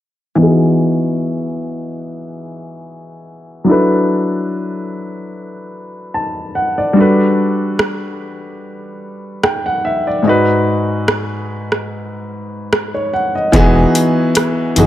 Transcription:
0.35 grand piano E3 B3 D#4
0.41 grand piano F#4 G#4
3.64 grand piano F#3 D4 E4
3.70 grand piano A4 B4
6.14 grand piano A5
6.55 grand piano F#5
6.78 grand piano D5
6.93 grand piano G3 D4 F#4
6.99 grand piano A4 B4
7.79 cross-stick
9.44 grand piano G5, cross-stick
9.66 grand piano F#5
9.85 grand piano E5
10.07 grand piano D5
10.22 grand piano G#2 G#3 D#4
10.27 grand piano F#4 B4
11.08 cross-stick
11.72 cross-stick
12.73 cross-stick
12.94 grand piano C#5
13.13 grand piano F#5
13.35 grand piano D#5
13.52 analog synth bass E1, grand piano E3 B3 D#4 F#4 G#4, kick, closed hi-hat
13.95 closed hi-hat
14.35 cross-stick, closed hi-hat
14.76 analog synth bass F#1, grand piano E3 B3 D#4 F#4 G#4, closed hi-hat

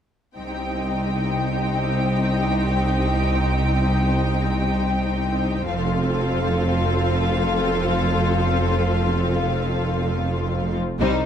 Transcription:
0.37 double bass section C2, cello section C2, viola section C4 D#4, violin section G4 G5
5.67 double bass section F1, cello section F2, viola section C4 F4, violin section A4 F5
11.00 double bass section C2, cello section C3, viola section G3, french horn section G3 D#4, violin section D#4 C5

